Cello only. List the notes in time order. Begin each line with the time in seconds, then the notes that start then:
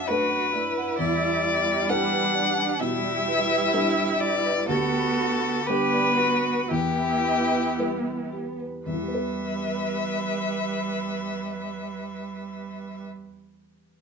Already playing: D4
0.09 F#4
0.53 E4
1.88 D4
2.80 E4
4.68 F#4
5.66 G4
6.17 F#4
6.68 E4
8.86 G3